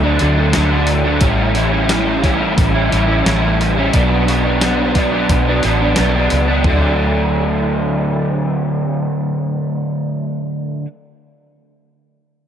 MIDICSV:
0, 0, Header, 1, 4, 480
1, 0, Start_track
1, 0, Key_signature, 2, "major"
1, 0, Tempo, 676437
1, 873, Time_signature, 4, 2, 24, 8
1, 8854, End_track
2, 0, Start_track
2, 0, Title_t, "Overdriven electric guitar"
2, 0, Program_c, 0, 29
2, 22, Note_on_c, 0, 62, 67
2, 33, Note_on_c, 0, 57, 60
2, 37, Note_on_c, 0, 54, 53
2, 137, Note_off_c, 0, 54, 0
2, 139, Note_on_c, 0, 50, 70
2, 145, Note_on_c, 0, 54, 72
2, 149, Note_off_c, 0, 57, 0
2, 151, Note_off_c, 0, 62, 0
2, 152, Note_on_c, 0, 57, 74
2, 159, Note_on_c, 0, 62, 72
2, 256, Note_off_c, 0, 62, 0
2, 265, Note_on_c, 0, 62, 75
2, 271, Note_off_c, 0, 57, 0
2, 274, Note_off_c, 0, 54, 0
2, 274, Note_on_c, 0, 57, 61
2, 282, Note_on_c, 0, 54, 59
2, 378, Note_off_c, 0, 50, 0
2, 383, Note_off_c, 0, 54, 0
2, 387, Note_on_c, 0, 50, 81
2, 392, Note_on_c, 0, 54, 95
2, 393, Note_off_c, 0, 62, 0
2, 394, Note_off_c, 0, 57, 0
2, 397, Note_on_c, 0, 57, 90
2, 401, Note_on_c, 0, 62, 95
2, 498, Note_off_c, 0, 62, 0
2, 507, Note_on_c, 0, 62, 76
2, 513, Note_off_c, 0, 54, 0
2, 514, Note_off_c, 0, 57, 0
2, 517, Note_on_c, 0, 57, 64
2, 522, Note_on_c, 0, 54, 53
2, 735, Note_off_c, 0, 62, 0
2, 743, Note_on_c, 0, 62, 70
2, 750, Note_off_c, 0, 50, 0
2, 752, Note_off_c, 0, 54, 0
2, 753, Note_off_c, 0, 57, 0
2, 756, Note_on_c, 0, 57, 68
2, 760, Note_on_c, 0, 54, 57
2, 854, Note_off_c, 0, 62, 0
2, 862, Note_off_c, 0, 54, 0
2, 864, Note_on_c, 0, 45, 79
2, 870, Note_on_c, 0, 52, 81
2, 873, Note_off_c, 0, 57, 0
2, 873, Note_on_c, 0, 55, 96
2, 876, Note_on_c, 0, 61, 101
2, 880, Note_on_c, 0, 64, 84
2, 1096, Note_off_c, 0, 52, 0
2, 1102, Note_off_c, 0, 55, 0
2, 1105, Note_on_c, 0, 52, 71
2, 1107, Note_off_c, 0, 61, 0
2, 1110, Note_off_c, 0, 64, 0
2, 1111, Note_on_c, 0, 55, 67
2, 1115, Note_on_c, 0, 61, 78
2, 1118, Note_on_c, 0, 64, 80
2, 1212, Note_off_c, 0, 64, 0
2, 1220, Note_off_c, 0, 61, 0
2, 1221, Note_on_c, 0, 64, 73
2, 1226, Note_off_c, 0, 55, 0
2, 1229, Note_on_c, 0, 61, 66
2, 1234, Note_on_c, 0, 55, 64
2, 1332, Note_off_c, 0, 45, 0
2, 1340, Note_off_c, 0, 52, 0
2, 1340, Note_off_c, 0, 55, 0
2, 1340, Note_on_c, 0, 45, 80
2, 1344, Note_off_c, 0, 61, 0
2, 1348, Note_off_c, 0, 64, 0
2, 1348, Note_on_c, 0, 52, 85
2, 1349, Note_on_c, 0, 55, 87
2, 1352, Note_on_c, 0, 61, 90
2, 1357, Note_on_c, 0, 64, 88
2, 1571, Note_off_c, 0, 52, 0
2, 1579, Note_on_c, 0, 52, 66
2, 1580, Note_off_c, 0, 55, 0
2, 1586, Note_off_c, 0, 61, 0
2, 1589, Note_on_c, 0, 55, 74
2, 1590, Note_off_c, 0, 64, 0
2, 1594, Note_on_c, 0, 61, 76
2, 1598, Note_on_c, 0, 64, 85
2, 1685, Note_off_c, 0, 64, 0
2, 1694, Note_on_c, 0, 64, 66
2, 1696, Note_off_c, 0, 61, 0
2, 1704, Note_off_c, 0, 55, 0
2, 1705, Note_on_c, 0, 61, 59
2, 1712, Note_on_c, 0, 55, 52
2, 1827, Note_off_c, 0, 45, 0
2, 1933, Note_off_c, 0, 64, 0
2, 1941, Note_off_c, 0, 61, 0
2, 1941, Note_on_c, 0, 64, 60
2, 1947, Note_off_c, 0, 52, 0
2, 1947, Note_off_c, 0, 55, 0
2, 1950, Note_on_c, 0, 61, 58
2, 1956, Note_on_c, 0, 55, 55
2, 2060, Note_off_c, 0, 55, 0
2, 2064, Note_on_c, 0, 52, 61
2, 2066, Note_off_c, 0, 61, 0
2, 2069, Note_on_c, 0, 55, 67
2, 2070, Note_off_c, 0, 64, 0
2, 2074, Note_on_c, 0, 61, 69
2, 2078, Note_on_c, 0, 64, 72
2, 2173, Note_off_c, 0, 64, 0
2, 2180, Note_off_c, 0, 61, 0
2, 2182, Note_on_c, 0, 64, 64
2, 2188, Note_on_c, 0, 61, 64
2, 2190, Note_off_c, 0, 55, 0
2, 2198, Note_on_c, 0, 55, 50
2, 2304, Note_off_c, 0, 52, 0
2, 2306, Note_on_c, 0, 45, 78
2, 2309, Note_off_c, 0, 55, 0
2, 2312, Note_off_c, 0, 61, 0
2, 2313, Note_on_c, 0, 52, 88
2, 2316, Note_off_c, 0, 64, 0
2, 2318, Note_on_c, 0, 55, 75
2, 2320, Note_on_c, 0, 61, 89
2, 2324, Note_on_c, 0, 64, 83
2, 2423, Note_off_c, 0, 64, 0
2, 2429, Note_off_c, 0, 61, 0
2, 2431, Note_on_c, 0, 64, 69
2, 2437, Note_off_c, 0, 55, 0
2, 2437, Note_on_c, 0, 61, 58
2, 2445, Note_on_c, 0, 55, 59
2, 2666, Note_off_c, 0, 64, 0
2, 2670, Note_off_c, 0, 45, 0
2, 2674, Note_off_c, 0, 52, 0
2, 2675, Note_on_c, 0, 64, 71
2, 2677, Note_off_c, 0, 61, 0
2, 2684, Note_off_c, 0, 55, 0
2, 2686, Note_on_c, 0, 61, 63
2, 2692, Note_on_c, 0, 55, 57
2, 2780, Note_off_c, 0, 64, 0
2, 2786, Note_off_c, 0, 61, 0
2, 2789, Note_off_c, 0, 55, 0
2, 2792, Note_on_c, 0, 47, 77
2, 2802, Note_on_c, 0, 54, 91
2, 2807, Note_on_c, 0, 59, 90
2, 2810, Note_on_c, 0, 62, 91
2, 3031, Note_off_c, 0, 47, 0
2, 3038, Note_off_c, 0, 54, 0
2, 3040, Note_on_c, 0, 47, 73
2, 3045, Note_off_c, 0, 59, 0
2, 3045, Note_off_c, 0, 62, 0
2, 3046, Note_on_c, 0, 54, 70
2, 3053, Note_on_c, 0, 62, 78
2, 3054, Note_on_c, 0, 59, 69
2, 3146, Note_off_c, 0, 62, 0
2, 3155, Note_on_c, 0, 62, 72
2, 3159, Note_off_c, 0, 59, 0
2, 3162, Note_off_c, 0, 54, 0
2, 3167, Note_on_c, 0, 59, 60
2, 3170, Note_on_c, 0, 54, 57
2, 3271, Note_off_c, 0, 47, 0
2, 3274, Note_off_c, 0, 54, 0
2, 3279, Note_on_c, 0, 47, 78
2, 3283, Note_off_c, 0, 59, 0
2, 3283, Note_on_c, 0, 54, 85
2, 3284, Note_off_c, 0, 62, 0
2, 3291, Note_on_c, 0, 59, 84
2, 3293, Note_on_c, 0, 62, 95
2, 3514, Note_off_c, 0, 47, 0
2, 3519, Note_off_c, 0, 54, 0
2, 3523, Note_on_c, 0, 47, 68
2, 3524, Note_off_c, 0, 59, 0
2, 3528, Note_on_c, 0, 54, 70
2, 3529, Note_off_c, 0, 62, 0
2, 3532, Note_on_c, 0, 59, 64
2, 3537, Note_on_c, 0, 62, 72
2, 3629, Note_off_c, 0, 62, 0
2, 3637, Note_on_c, 0, 62, 67
2, 3638, Note_off_c, 0, 59, 0
2, 3646, Note_off_c, 0, 54, 0
2, 3646, Note_on_c, 0, 59, 61
2, 3654, Note_on_c, 0, 54, 51
2, 3876, Note_off_c, 0, 62, 0
2, 3879, Note_off_c, 0, 47, 0
2, 3883, Note_off_c, 0, 59, 0
2, 3884, Note_on_c, 0, 62, 63
2, 3892, Note_on_c, 0, 59, 56
2, 3893, Note_off_c, 0, 54, 0
2, 3901, Note_on_c, 0, 54, 54
2, 3997, Note_on_c, 0, 47, 64
2, 3998, Note_off_c, 0, 54, 0
2, 4001, Note_off_c, 0, 59, 0
2, 4006, Note_on_c, 0, 54, 68
2, 4008, Note_off_c, 0, 62, 0
2, 4010, Note_on_c, 0, 59, 70
2, 4016, Note_on_c, 0, 62, 64
2, 4111, Note_off_c, 0, 62, 0
2, 4117, Note_off_c, 0, 59, 0
2, 4120, Note_on_c, 0, 62, 66
2, 4125, Note_off_c, 0, 54, 0
2, 4126, Note_on_c, 0, 59, 55
2, 4133, Note_on_c, 0, 54, 55
2, 4233, Note_off_c, 0, 47, 0
2, 4240, Note_off_c, 0, 54, 0
2, 4242, Note_on_c, 0, 47, 84
2, 4246, Note_off_c, 0, 59, 0
2, 4248, Note_off_c, 0, 62, 0
2, 4248, Note_on_c, 0, 54, 74
2, 4254, Note_on_c, 0, 59, 82
2, 4256, Note_on_c, 0, 62, 91
2, 4351, Note_off_c, 0, 62, 0
2, 4359, Note_on_c, 0, 62, 68
2, 4360, Note_off_c, 0, 59, 0
2, 4367, Note_off_c, 0, 54, 0
2, 4368, Note_on_c, 0, 59, 59
2, 4376, Note_on_c, 0, 54, 51
2, 4586, Note_off_c, 0, 62, 0
2, 4595, Note_off_c, 0, 59, 0
2, 4595, Note_on_c, 0, 62, 63
2, 4598, Note_off_c, 0, 47, 0
2, 4602, Note_off_c, 0, 54, 0
2, 4604, Note_on_c, 0, 59, 67
2, 4611, Note_on_c, 0, 54, 59
2, 4700, Note_off_c, 0, 62, 0
2, 4705, Note_off_c, 0, 59, 0
2, 4708, Note_off_c, 0, 54, 0
2, 4715, Note_on_c, 0, 50, 79
2, 4730, Note_on_c, 0, 54, 84
2, 4734, Note_on_c, 0, 57, 86
2, 4744, Note_on_c, 0, 62, 89
2, 7698, Note_off_c, 0, 50, 0
2, 7706, Note_off_c, 0, 54, 0
2, 7708, Note_off_c, 0, 57, 0
2, 7713, Note_off_c, 0, 62, 0
2, 8854, End_track
3, 0, Start_track
3, 0, Title_t, "Fingered electric bass"
3, 0, Program_c, 1, 33
3, 0, Note_on_c, 1, 38, 95
3, 134, Note_off_c, 1, 38, 0
3, 157, Note_on_c, 1, 38, 85
3, 381, Note_off_c, 1, 38, 0
3, 403, Note_on_c, 1, 38, 83
3, 852, Note_off_c, 1, 38, 0
3, 863, Note_on_c, 1, 33, 86
3, 1801, Note_off_c, 1, 33, 0
3, 1832, Note_on_c, 1, 33, 91
3, 2060, Note_off_c, 1, 33, 0
3, 2081, Note_on_c, 1, 33, 88
3, 2304, Note_off_c, 1, 33, 0
3, 2313, Note_on_c, 1, 33, 88
3, 2767, Note_off_c, 1, 33, 0
3, 2801, Note_on_c, 1, 35, 81
3, 3730, Note_off_c, 1, 35, 0
3, 3759, Note_on_c, 1, 35, 86
3, 3984, Note_off_c, 1, 35, 0
3, 4007, Note_on_c, 1, 33, 74
3, 4217, Note_off_c, 1, 33, 0
3, 4248, Note_on_c, 1, 35, 73
3, 4458, Note_off_c, 1, 35, 0
3, 4487, Note_on_c, 1, 37, 72
3, 4698, Note_off_c, 1, 37, 0
3, 4716, Note_on_c, 1, 38, 85
3, 7670, Note_off_c, 1, 38, 0
3, 8854, End_track
4, 0, Start_track
4, 0, Title_t, "Drums"
4, 137, Note_on_c, 9, 46, 54
4, 208, Note_off_c, 9, 46, 0
4, 378, Note_on_c, 9, 38, 105
4, 378, Note_on_c, 9, 46, 76
4, 449, Note_off_c, 9, 38, 0
4, 449, Note_off_c, 9, 46, 0
4, 616, Note_on_c, 9, 46, 53
4, 687, Note_off_c, 9, 46, 0
4, 856, Note_on_c, 9, 46, 75
4, 861, Note_on_c, 9, 36, 102
4, 927, Note_off_c, 9, 46, 0
4, 932, Note_off_c, 9, 36, 0
4, 1099, Note_on_c, 9, 46, 50
4, 1170, Note_off_c, 9, 46, 0
4, 1343, Note_on_c, 9, 38, 100
4, 1343, Note_on_c, 9, 46, 65
4, 1414, Note_off_c, 9, 38, 0
4, 1414, Note_off_c, 9, 46, 0
4, 1587, Note_on_c, 9, 36, 72
4, 1589, Note_on_c, 9, 46, 47
4, 1658, Note_off_c, 9, 36, 0
4, 1660, Note_off_c, 9, 46, 0
4, 1829, Note_on_c, 9, 46, 66
4, 1830, Note_on_c, 9, 36, 102
4, 1900, Note_off_c, 9, 46, 0
4, 1901, Note_off_c, 9, 36, 0
4, 2075, Note_on_c, 9, 46, 51
4, 2146, Note_off_c, 9, 46, 0
4, 2316, Note_on_c, 9, 38, 100
4, 2316, Note_on_c, 9, 46, 71
4, 2387, Note_off_c, 9, 38, 0
4, 2387, Note_off_c, 9, 46, 0
4, 2561, Note_on_c, 9, 46, 46
4, 2632, Note_off_c, 9, 46, 0
4, 2792, Note_on_c, 9, 46, 65
4, 2796, Note_on_c, 9, 36, 96
4, 2863, Note_off_c, 9, 46, 0
4, 2867, Note_off_c, 9, 36, 0
4, 3040, Note_on_c, 9, 46, 51
4, 3111, Note_off_c, 9, 46, 0
4, 3274, Note_on_c, 9, 38, 93
4, 3274, Note_on_c, 9, 46, 66
4, 3345, Note_off_c, 9, 38, 0
4, 3345, Note_off_c, 9, 46, 0
4, 3513, Note_on_c, 9, 46, 52
4, 3516, Note_on_c, 9, 36, 71
4, 3584, Note_off_c, 9, 46, 0
4, 3587, Note_off_c, 9, 36, 0
4, 3757, Note_on_c, 9, 46, 74
4, 3758, Note_on_c, 9, 36, 102
4, 3828, Note_off_c, 9, 46, 0
4, 3829, Note_off_c, 9, 36, 0
4, 3994, Note_on_c, 9, 46, 53
4, 4065, Note_off_c, 9, 46, 0
4, 4229, Note_on_c, 9, 38, 107
4, 4229, Note_on_c, 9, 46, 75
4, 4300, Note_off_c, 9, 38, 0
4, 4300, Note_off_c, 9, 46, 0
4, 4473, Note_on_c, 9, 46, 55
4, 4544, Note_off_c, 9, 46, 0
4, 4715, Note_on_c, 9, 36, 91
4, 4715, Note_on_c, 9, 43, 87
4, 4785, Note_off_c, 9, 43, 0
4, 4786, Note_off_c, 9, 36, 0
4, 8854, End_track
0, 0, End_of_file